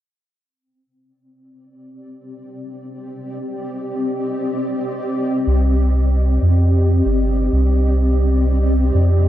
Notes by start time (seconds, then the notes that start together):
0.42 C4
0.89 D5
1.24 G4
2.69 D#5
5.47 C2
6.42 F2
7.05 G1
7.52 C2
8.94 F2